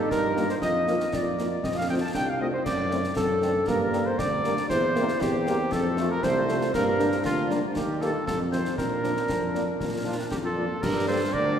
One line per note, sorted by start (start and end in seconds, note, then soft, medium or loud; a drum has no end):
0.00 0.61 D#4 medium
0.00 0.11 A4 medium
0.10 0.53 G2 medium
0.10 0.46 A#4 medium
0.10 concert bass drum medium
0.10 snare medium
0.36 0.45 D#3 medium
0.36 0.45 G3 medium
0.36 0.45 A#3 soft
0.36 0.45 A#3 medium
0.36 0.45 D#4 soft
0.36 snare soft
0.49 0.55 C5 medium
0.49 0.56 C5 medium
0.49 snare soft
0.61 0.99 F2 medium
0.61 1.04 F4 medium
0.61 0.93 D#5 medium
0.61 1.09 D#5 medium
0.61 concert bass drum medium
0.61 snare medium
0.87 0.96 F3 medium
0.87 0.96 A#3 soft
0.87 0.96 A#3 medium
0.87 0.96 F4 soft
0.87 snare soft
1.00 snare soft
1.12 1.55 F2 medium
1.12 1.60 F4 medium
1.12 1.60 D5 medium
1.12 1.66 D5 medium
1.12 concert bass drum medium
1.12 snare medium
1.37 1.46 F3 soft
1.37 1.47 A#3 soft
1.37 1.47 F4 soft
1.37 snare medium
1.63 2.06 F2 medium
1.63 2.15 C4 medium
1.63 1.69 D#5 medium
1.63 1.77 D#5 medium
1.63 concert bass drum medium
1.63 snare medium
1.76 1.88 F5 soft
1.76 1.89 F5 medium
1.89 1.98 A3 medium
1.89 1.98 A3 soft
1.89 1.98 C4 soft
1.89 1.98 F4 soft
1.89 2.02 G5 medium
1.89 1.95 G5 medium
2.00 2.14 A5 medium
2.00 2.09 A5 medium
2.14 2.57 C2 medium
2.14 2.52 D4 medium
2.14 2.26 G5 medium
2.14 2.31 G5 medium
2.14 concert bass drum medium
2.14 snare medium
2.26 2.38 F5 medium
2.26 2.41 F5 medium
2.39 2.49 A3 soft
2.39 2.49 C4 soft
2.39 2.49 F4 soft
2.39 2.45 D#5 medium
2.39 2.47 D#5 medium
2.53 2.65 D#4 soft
2.53 2.65 C5 medium
2.64 3.08 F#2 medium
2.64 3.01 D5 medium
2.64 3.13 D5 medium
2.64 concert bass drum medium
2.64 snare medium
2.64 crash soft
2.90 3.00 A3 medium
2.90 3.00 A3 soft
2.90 3.00 C4 medium
2.90 3.00 D4 soft
2.90 snare soft
3.04 snare soft
3.15 3.59 F#2 medium
3.15 3.27 C4 medium
3.15 3.63 A4 medium
3.15 3.69 A4 medium
3.15 concert bass drum medium
3.15 snare medium
3.41 3.51 A3 medium
3.41 3.50 C4 medium
3.41 3.51 C4 soft
3.41 3.53 D4 medium
3.41 3.51 D4 soft
3.41 snare soft
3.67 4.10 G2 medium
3.67 4.20 A#3 medium
3.67 4.08 A#4 medium
3.67 4.06 A#4 medium
3.67 concert bass drum medium
3.67 snare medium
3.92 4.01 G3 medium
3.92 4.02 G3 soft
3.92 4.02 A#3 medium
3.92 4.02 A#3 soft
3.92 4.02 D4 medium
3.92 snare soft
4.06 4.18 C5 medium
4.06 4.20 C5 medium
4.18 4.61 D2 medium
4.18 4.46 C4 medium
4.18 4.66 D5 medium
4.18 4.69 D5 medium
4.18 concert bass drum medium
4.18 snare medium
4.44 4.53 G3 medium
4.44 4.53 A#3 medium
4.44 4.54 A#3 medium
4.44 4.71 D4 medium
4.44 4.54 D4 medium
4.44 snare medium
4.57 snare medium
4.69 5.12 E2 medium
4.69 5.20 E4 medium
4.69 5.22 C5 medium
4.69 5.17 C5 medium
4.69 concert bass drum medium
4.69 snare medium
4.95 5.04 G3 medium
4.95 5.04 A#3 medium
4.95 5.05 A#3 medium
4.95 5.05 C4 medium
4.95 5.05 G4 soft
4.95 snare soft
5.08 snare soft
5.21 5.63 E2 medium
5.21 6.19 C4 medium
5.21 5.74 G4 medium
5.21 5.68 G4 medium
5.21 concert bass drum medium
5.21 snare medium
5.46 5.55 G3 medium
5.46 5.55 A#3 medium
5.46 5.56 A#3 medium
5.46 5.56 C4 medium
5.46 5.56 G4 medium
5.46 snare medium
5.71 6.14 F2 medium
5.71 6.10 A4 medium
5.71 concert bass drum medium
5.71 snare medium
5.97 6.06 F3 medium
5.97 6.06 A3 medium
5.97 6.06 C4 medium
5.97 6.07 F4 medium
5.97 snare soft
6.10 6.15 A#4 medium
6.10 6.25 A#4 medium
6.22 6.65 C2 medium
6.22 6.70 A3 medium
6.22 6.70 C5 medium
6.22 6.74 C5 loud
6.22 concert bass drum medium
6.22 snare medium
6.48 6.57 F3 medium
6.48 6.57 A3 medium
6.48 6.58 A3 medium
6.48 6.58 C4 medium
6.48 6.58 F4 medium
6.48 snare medium
6.61 snare soft
6.74 7.16 G2 medium
6.74 7.02 A#3 medium
6.74 7.21 A#4 medium
6.74 concert bass drum medium
6.74 snare medium
6.74 crash soft
6.99 7.08 D3 medium
6.99 7.09 G3 medium
6.99 7.08 A#3 medium
6.99 7.09 D4 medium
6.99 7.77 D4 medium
6.99 snare medium
7.12 snare soft
7.25 7.63 D2 medium
7.25 7.72 F4 medium
7.25 7.56 F4 medium
7.25 concert bass drum medium
7.25 snare medium
7.49 7.59 D3 medium
7.49 7.59 G3 medium
7.49 7.59 A#3 medium
7.49 7.59 D4 medium
7.49 snare medium
7.76 8.18 D#2 medium
7.76 8.26 D#4 medium
7.76 8.01 G4 medium
7.76 8.03 G4 medium
7.76 concert bass drum medium
7.76 snare medium
8.00 8.09 D#3 medium
8.00 8.11 G3 soft
8.00 8.09 A#3 medium
8.00 8.11 D#4 soft
8.00 8.12 A4 medium
8.00 8.27 A4 medium
8.00 snare soft
8.26 8.69 F2 medium
8.26 8.79 C4 medium
8.26 8.38 A4 medium
8.26 8.39 A4 medium
8.26 concert bass drum medium
8.26 snare medium
8.51 8.61 D#3 medium
8.51 8.62 F3 soft
8.51 8.61 C4 medium
8.51 8.62 C4 soft
8.51 8.62 D#4 soft
8.51 8.76 C5 medium
8.51 snare medium
8.65 snare soft
8.77 9.20 A#2 medium
8.77 10.56 D4 medium
8.77 10.01 A#4 medium
8.77 10.02 A#4 medium
8.77 concert bass drum medium
8.77 snare medium
9.02 9.12 F3 medium
9.02 9.12 F3 soft
9.02 9.13 A#3 soft
9.02 9.12 D4 medium
9.02 9.13 D4 soft
9.02 snare soft
9.17 snare soft
9.28 9.71 F2 medium
9.28 concert bass drum medium
9.28 snare medium
9.53 9.63 F3 medium
9.53 9.63 F3 soft
9.53 9.63 A#3 soft
9.53 9.63 D4 soft
9.53 snare soft
9.79 10.22 A#2 medium
9.79 concert bass drum medium
9.79 snare medium
10.05 10.14 F3 soft
10.05 10.15 F3 soft
10.05 10.15 A#3 soft
10.05 10.29 D4 medium
10.05 10.14 D4 soft
10.05 10.15 D4 soft
10.05 10.17 F4 medium
10.30 10.73 F2 medium
10.30 10.36 D#4 medium
10.30 10.37 G4 medium
10.30 concert bass drum medium
10.30 snare medium
10.44 10.79 F4 medium
10.44 10.84 A4 medium
10.56 10.65 F3 medium
10.56 10.66 F3 soft
10.56 10.66 A#3 soft
10.56 10.65 D4 soft
10.56 10.66 D4 soft
10.81 11.24 G2 medium
10.81 11.59 G3 medium
10.81 11.59 D4 medium
10.81 11.07 G4 medium
10.81 11.08 A#4 medium
10.81 concert bass drum medium
10.81 snare medium
10.81 crash soft
11.07 11.16 G3 medium
11.07 11.16 A#3 medium
11.07 11.16 D4 medium
11.07 11.20 A4 medium
11.07 11.35 C5 medium
11.33 11.59 D2 medium
11.33 11.57 A#4 medium
11.33 11.59 D5 loud
11.33 concert bass drum medium